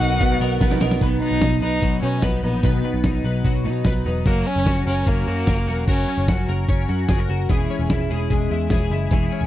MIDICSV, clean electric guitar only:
0, 0, Header, 1, 2, 480
1, 0, Start_track
1, 0, Key_signature, 5, "major"
1, 0, Tempo, 404585
1, 1205, Time_signature, 4, 2, 24, 8
1, 11232, End_track
2, 0, Start_track
2, 0, Title_t, "Clean electric guitar"
2, 0, Program_c, 0, 27
2, 0, Note_on_c, 0, 47, 86
2, 0, Note_on_c, 0, 70, 67
2, 14, Note_on_c, 0, 63, 64
2, 254, Note_on_c, 0, 59, 64
2, 473, Note_off_c, 0, 70, 0
2, 488, Note_on_c, 0, 70, 69
2, 724, Note_off_c, 0, 59, 0
2, 729, Note_on_c, 0, 59, 62
2, 950, Note_off_c, 0, 70, 0
2, 964, Note_on_c, 0, 70, 67
2, 1194, Note_off_c, 0, 47, 0
2, 1208, Note_off_c, 0, 70, 0
2, 1208, Note_on_c, 0, 47, 70
2, 1213, Note_on_c, 0, 71, 57
2, 1439, Note_off_c, 0, 59, 0
2, 1444, Note_on_c, 0, 59, 53
2, 1680, Note_off_c, 0, 63, 0
2, 1685, Note_on_c, 0, 63, 55
2, 1910, Note_off_c, 0, 71, 0
2, 1924, Note_on_c, 0, 71, 58
2, 2166, Note_on_c, 0, 54, 57
2, 2389, Note_off_c, 0, 63, 0
2, 2403, Note_on_c, 0, 63, 56
2, 2632, Note_off_c, 0, 71, 0
2, 2646, Note_on_c, 0, 71, 59
2, 2876, Note_off_c, 0, 63, 0
2, 2891, Note_on_c, 0, 63, 47
2, 3117, Note_off_c, 0, 47, 0
2, 3126, Note_off_c, 0, 71, 0
2, 3132, Note_on_c, 0, 47, 69
2, 3140, Note_on_c, 0, 71, 60
2, 3361, Note_off_c, 0, 59, 0
2, 3375, Note_on_c, 0, 59, 52
2, 3605, Note_off_c, 0, 63, 0
2, 3619, Note_on_c, 0, 63, 55
2, 3839, Note_off_c, 0, 71, 0
2, 3853, Note_on_c, 0, 71, 56
2, 4092, Note_off_c, 0, 54, 0
2, 4097, Note_on_c, 0, 54, 57
2, 4322, Note_off_c, 0, 63, 0
2, 4336, Note_on_c, 0, 63, 51
2, 4561, Note_off_c, 0, 71, 0
2, 4575, Note_on_c, 0, 71, 59
2, 4802, Note_off_c, 0, 63, 0
2, 4816, Note_on_c, 0, 63, 50
2, 5051, Note_off_c, 0, 47, 0
2, 5052, Note_off_c, 0, 71, 0
2, 5053, Note_off_c, 0, 54, 0
2, 5057, Note_on_c, 0, 54, 73
2, 5064, Note_on_c, 0, 70, 60
2, 5100, Note_off_c, 0, 63, 0
2, 5101, Note_off_c, 0, 59, 0
2, 5298, Note_on_c, 0, 61, 55
2, 5540, Note_on_c, 0, 66, 57
2, 5765, Note_off_c, 0, 70, 0
2, 5779, Note_on_c, 0, 70, 59
2, 6009, Note_off_c, 0, 61, 0
2, 6014, Note_on_c, 0, 61, 58
2, 6243, Note_off_c, 0, 66, 0
2, 6257, Note_on_c, 0, 66, 53
2, 6480, Note_off_c, 0, 70, 0
2, 6494, Note_on_c, 0, 70, 60
2, 6719, Note_off_c, 0, 66, 0
2, 6733, Note_on_c, 0, 66, 53
2, 6961, Note_off_c, 0, 54, 0
2, 6972, Note_off_c, 0, 70, 0
2, 6975, Note_on_c, 0, 54, 66
2, 6984, Note_on_c, 0, 70, 61
2, 7209, Note_off_c, 0, 61, 0
2, 7213, Note_on_c, 0, 61, 54
2, 7441, Note_off_c, 0, 66, 0
2, 7455, Note_on_c, 0, 66, 52
2, 7681, Note_off_c, 0, 70, 0
2, 7696, Note_on_c, 0, 70, 57
2, 7931, Note_off_c, 0, 61, 0
2, 7935, Note_on_c, 0, 61, 60
2, 8160, Note_off_c, 0, 66, 0
2, 8175, Note_on_c, 0, 66, 55
2, 8410, Note_off_c, 0, 70, 0
2, 8414, Note_on_c, 0, 68, 58
2, 8533, Note_off_c, 0, 68, 0
2, 8533, Note_on_c, 0, 70, 46
2, 8642, Note_off_c, 0, 66, 0
2, 8656, Note_on_c, 0, 66, 49
2, 8892, Note_off_c, 0, 70, 0
2, 8894, Note_off_c, 0, 54, 0
2, 8894, Note_on_c, 0, 52, 70
2, 8902, Note_on_c, 0, 68, 60
2, 8942, Note_off_c, 0, 66, 0
2, 9131, Note_off_c, 0, 61, 0
2, 9135, Note_on_c, 0, 61, 56
2, 9376, Note_on_c, 0, 64, 54
2, 9613, Note_off_c, 0, 68, 0
2, 9617, Note_on_c, 0, 68, 57
2, 9859, Note_on_c, 0, 56, 56
2, 10085, Note_off_c, 0, 64, 0
2, 10099, Note_on_c, 0, 64, 52
2, 10335, Note_off_c, 0, 68, 0
2, 10339, Note_on_c, 0, 68, 59
2, 10563, Note_off_c, 0, 64, 0
2, 10577, Note_on_c, 0, 64, 53
2, 10804, Note_off_c, 0, 52, 0
2, 10818, Note_on_c, 0, 52, 73
2, 10820, Note_off_c, 0, 68, 0
2, 10825, Note_on_c, 0, 68, 60
2, 11042, Note_off_c, 0, 61, 0
2, 11056, Note_on_c, 0, 61, 51
2, 11232, Note_off_c, 0, 52, 0
2, 11232, Note_off_c, 0, 56, 0
2, 11232, Note_off_c, 0, 61, 0
2, 11232, Note_off_c, 0, 64, 0
2, 11232, Note_off_c, 0, 68, 0
2, 11232, End_track
0, 0, End_of_file